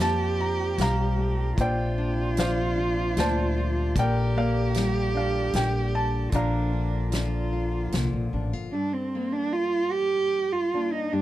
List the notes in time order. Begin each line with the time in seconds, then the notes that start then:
Already playing: F2 A#2 F3 A#3 C4 F4 G4 F5
0.00 A5, snare
0.41 A#5
0.77 B1 G3 F5, snare, closed hi-hat
0.82 A#5
1.18 A3
1.57 A#1 A#2 C3 D4 F4 C5 D5 G5, kick, closed hi-hat
1.98 D4
2.37 F3 C5 D5 F5, snare, closed hi-hat
2.78 F4
3.17 D2 A#2 A#4 C5 D5 A5, snare, closed hi-hat
3.58 F4
3.96 A#1 A#2 D3 G4 A#4 D5 G5, kick, closed hi-hat
4.36 A#3 A#4 D5 F5
4.74 G3, snare, closed hi-hat
5.14 D4 F5
5.53 A#1 A#2 A#4 G5, snare, closed hi-hat
5.94 D4 A5
6.32 A#1 A#2 F3 D4 F4 A#4 D5 F5 A#5, kick, closed hi-hat
6.73 D4
7.12 F3 F4, snare, closed hi-hat
7.53 F4
7.92 C2 A#2 A#4, snare, closed hi-hat
8.13 A#1
8.33 A1 D4
8.53 G1 F4
8.72 G2 D4 A4
8.93 C4
9.15 A#3
9.33 D4
9.53 F4
9.92 G4
10.53 F4
10.74 A#3 D4
10.93 D#4
11.12 G2 D4 G4